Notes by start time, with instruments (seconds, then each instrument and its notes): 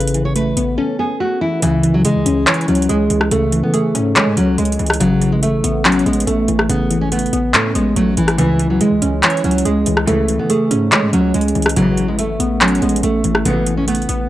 Already playing: 808-style bass A1, synth pluck C#3 E3 A3 B3 C#4, nylon-string guitar B4
0.00 closed hi-hat
0.08 closed hi-hat
0.14 synth pluck E3, closed hi-hat
0.25 nylon-string guitar C#5
0.36 synth pluck A3, nylon-string guitar B4, closed hi-hat
0.57 808-style bass A1, synth pluck B3, closed hi-hat
0.78 synth pluck C#4, nylon-string guitar A4
0.99 synth pluck B3, nylon-string guitar G#4
1.20 synth pluck A3, nylon-string guitar F#4
1.41 synth pluck E3, nylon-string guitar E4
1.62 808-style bass C#2, synth pluck C#3, nylon-string guitar E3, closed hi-hat
1.83 synth pluck E3, closed hi-hat
1.94 nylon-string guitar F#3
2.05 808-style bass C#3, synth pluck G#3, nylon-string guitar G#3, closed hi-hat
2.15 808-style bass C#2
2.26 808-style bass C#2, synth pluck C#4, closed hi-hat
2.47 nylon-string guitar E3, synth pluck C#5, clap, closed hi-hat
2.54 closed hi-hat
2.61 closed hi-hat
2.68 808-style bass C#2, nylon-string guitar F#3, synth pluck C#4, closed hi-hat
2.75 closed hi-hat
2.82 closed hi-hat
2.89 808-style bass C#2, nylon-string guitar G#3, synth pluck G#4, closed hi-hat
3.10 808-style bass C#2, synth pluck E3, closed hi-hat
3.21 cross-stick
3.31 808-style bass C#2, synth pluck C#3, nylon-string guitar A3, closed hi-hat
3.52 synth pluck E3, closed hi-hat
3.63 808-style bass E3, nylon-string guitar B3
3.74 nylon-string guitar A3, synth pluck G#4, closed hi-hat
3.95 808-style bass G#2, synth pluck C#4, closed hi-hat
4.16 808-style bass E3, nylon-string guitar G#3, synth pluck C#5, clap, closed hi-hat
4.27 808-style bass G#2
4.37 808-style bass C#2, nylon-string guitar F#3, synth pluck C#4, closed hi-hat
4.58 808-style bass C#2, synth pluck G#3, nylon-string guitar G#3, closed hi-hat
4.65 closed hi-hat
4.72 closed hi-hat
4.79 808-style bass C#2, synth pluck E3, closed hi-hat
4.86 cross-stick, closed hi-hat
4.93 closed hi-hat
5.00 808-style bass A1, synth pluck C#3, nylon-string guitar F#3, closed hi-hat
5.21 synth pluck E3, closed hi-hat
5.32 nylon-string guitar G#3
5.43 808-style bass G#1, nylon-string guitar A3, synth pluck A3, closed hi-hat
5.64 808-style bass A1, synth pluck B3, closed hi-hat
5.85 nylon-string guitar F#3, synth pluck C#4, clap, closed hi-hat
5.92 closed hi-hat
5.99 closed hi-hat
6.06 808-style bass A1, nylon-string guitar G#3, synth pluck B3, closed hi-hat
6.13 closed hi-hat
6.20 closed hi-hat
6.27 808-style bass A1, nylon-string guitar A3, synth pluck A3, closed hi-hat
6.48 808-style bass A1, synth pluck E3, closed hi-hat
6.59 cross-stick
6.69 808-style bass A1, synth pluck C#3, nylon-string guitar B3, closed hi-hat
6.91 synth pluck E3, closed hi-hat
7.01 nylon-string guitar C#4
7.12 synth pluck A3, nylon-string guitar B3, closed hi-hat
7.19 closed hi-hat
7.26 closed hi-hat
7.33 808-style bass A1, synth pluck B3, closed hi-hat
7.54 808-style bass A2, nylon-string guitar A3, synth pluck C#4, clap, closed hi-hat
7.75 808-style bass A1, nylon-string guitar G#3, synth pluck B3, closed hi-hat
7.96 808-style bass A1, nylon-string guitar F#3, synth pluck A3, closed hi-hat
8.17 808-style bass A1, nylon-string guitar E3, synth pluck E3, closed hi-hat, open hi-hat
8.28 cross-stick, closed hi-hat
8.38 808-style bass C#2, string section C#2 G#2 E3, synth pluck C#3, nylon-string guitar E3, closed hi-hat
8.59 synth pluck E3, closed hi-hat
8.70 nylon-string guitar F#3
8.81 808-style bass C#3, nylon-string guitar G#3, synth pluck G#3, closed hi-hat
8.91 808-style bass C#2
9.02 808-style bass C#2, synth pluck C#4, closed hi-hat
9.23 nylon-string guitar E3, synth pluck C#5, clap, closed hi-hat
9.30 closed hi-hat
9.37 closed hi-hat
9.44 808-style bass C#2, nylon-string guitar F#3, synth pluck C#4, closed hi-hat
9.51 closed hi-hat
9.58 closed hi-hat
9.65 808-style bass C#2, nylon-string guitar G#3, synth pluck G#4, closed hi-hat
9.86 808-style bass C#2, synth pluck E3, closed hi-hat
9.97 cross-stick
10.07 string section C#2 E3, 808-style bass C#2, synth pluck C#3, nylon-string guitar A3, closed hi-hat
10.28 synth pluck E3, closed hi-hat
10.39 808-style bass E3, nylon-string guitar B3
10.50 nylon-string guitar A3, synth pluck G#4, closed hi-hat
10.71 808-style bass G#2, synth pluck C#4, closed hi-hat
10.92 808-style bass E3, nylon-string guitar G#3, synth pluck C#5, clap, closed hi-hat
11.02 808-style bass G#2
11.13 808-style bass C#2, nylon-string guitar F#3, synth pluck C#4, closed hi-hat
11.34 808-style bass C#2, nylon-string guitar G#3, synth pluck G#3, closed hi-hat
11.41 closed hi-hat
11.48 closed hi-hat
11.55 808-style bass C#2, synth pluck E3, closed hi-hat
11.62 cross-stick, closed hi-hat
11.69 closed hi-hat
11.76 808-style bass A1, string section C#2 B2 E3, synth pluck C#3, nylon-string guitar F#3, closed hi-hat
11.97 synth pluck E3, closed hi-hat
12.08 nylon-string guitar G#3
12.19 808-style bass G#1, synth pluck A3, nylon-string guitar A3, closed hi-hat
12.40 808-style bass A1, synth pluck B3, closed hi-hat
12.61 nylon-string guitar F#3, synth pluck C#4, clap, closed hi-hat
12.68 closed hi-hat
12.75 closed hi-hat
12.82 808-style bass A1, nylon-string guitar G#3, synth pluck B3, closed hi-hat
12.89 closed hi-hat
12.96 closed hi-hat
13.03 808-style bass A1, synth pluck A3, nylon-string guitar A3, closed hi-hat
13.24 808-style bass A1, synth pluck E3, closed hi-hat
13.35 cross-stick
13.45 808-style bass A1, string section C#2 B2 E3, synth pluck C#3, nylon-string guitar B3, closed hi-hat
13.66 synth pluck E3, closed hi-hat
13.77 nylon-string guitar C#4
13.88 synth pluck A3, nylon-string guitar B3, closed hi-hat
13.95 closed hi-hat
14.02 closed hi-hat
14.09 808-style bass A1, synth pluck B3, closed hi-hat